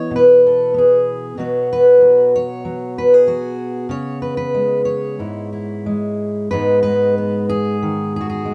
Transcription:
Already playing: E3 B3 E4 C#5
0.11 B2
0.16 B4
0.47 A4
0.74 B3
0.78 G#4
1.38 B2 F#3 B3 F#4 C#5
1.73 B4
2.01 F#3
2.36 C#5
2.65 F#3
2.98 B4
3.14 G#4
3.27 F#3 F#4
3.89 C#3 C#5
4.22 B4
4.37 B4
4.54 G#3
4.85 C#5
5.19 G#2 E4
5.53 E4
5.86 G#3
6.51 G#2 G#3 B3 D#4 B4
6.83 G#3 B4
7.18 B3
7.49 G#4
7.83 D#3
8.16 G#4
8.21 F#4
8.30 G#4
8.45 G#3

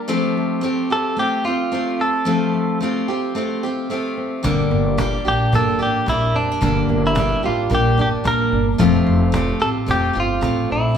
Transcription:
Already playing: A#3 D4 G4
0.08 F3 A3 C4 F4 G4
0.37 A3
0.61 A3 C4 F4 G4
0.90 C4 F4 G4 A4
1.17 A3 C4 F4 G4
1.44 C4 F4 G4
1.72 A3 C4 F4 G4
2.00 C4 A4
2.25 F3 A3 C4 F4 G4
2.54 A3
2.81 A3 C4 F4 G4
3.08 C4 F4 G4
3.35 A3 C4 F4 G4
3.63 C4 F4 G4
3.90 A3 C4 F4 G4
4.17 C4
4.43 G1 G2 D3 G3 A#3 D4 G4, cajon bass
4.71 G1 A#3
4.98 G3 A#3 D4 G4, cajon bass, cajon slap
5.25 A#1 G3 A#3 D4 G4
5.52 G1 G3 A#3 D4 G4 A4, cajon bass
5.79 A1 G3 A#3 D4 G4
6.06 A#1 G3 A#3 D4 E4 G4, cajon bass, cajon slap
6.34 F1 C4 D4
6.51 D4
6.61 G1 G2 D3 G3 A#3 D4 G4, cajon bass
6.89 G1 A#3
7.07 E4
7.15 G3 A#3 D4 G4, cajon bass, cajon slap
7.43 A1 G3 A#3 D4 F4 G4
7.70 A#1 G3 A#3 D4 G4, cajon bass
7.75 G4
7.97 G1 G3 A#3 D4 G4
8.02 G4
8.24 A#1 G3 A#3 D4 G4 A#4, cajon bass, cajon slap
8.52 G1 D4
8.78 F1 F3 A3 C4 F4 G4, cajon bass
9.06 F1 A3
9.32 A3 C4 F4 G4, cajon bass, cajon slap
9.60 A1 C4 F4 G4 A4
9.86 F1 A3 C4 F4 G4, cajon bass
9.91 G4
10.13 G1 C4 F4 G4
10.20 F4
10.41 A1 A3 C4 F4 G4, cajon bass, cajon slap
10.70 A#1 C4 E4

